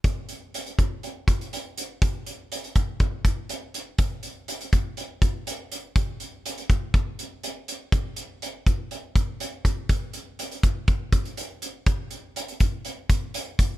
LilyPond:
\new DrumStaff \with { instrumentName = "Drums" } \drummode { \time 4/4 \tempo 4 = 122 <hh bd>8 hh8 hh16 hh16 <hh bd>8 hh8 <hh bd>16 hh16 hh8 hh8 | <hh bd>8 hh8 hh16 hh16 <hh bd>8 <hh bd>8 <hh bd>8 hh8 hh8 | <hh bd>8 hh8 hh16 hh16 <hh bd>8 hh8 <hh bd>8 hh8 hh8 | <hh bd>8 hh8 hh16 hh16 <hh bd>8 <hh bd>8 hh8 hh8 hh8 |
<hh bd>8 hh8 hh8 <hh bd>8 hh8 <hh bd>8 hh8 <hh bd>8 | <hh bd>8 hh8 hh16 hh16 <hh bd>8 <hh bd>8 <hh bd>16 hh16 hh8 hh8 | <hh bd>8 hh8 hh16 hh16 <hh bd>8 hh8 <hh bd>8 hh8 <hh bd>8 | }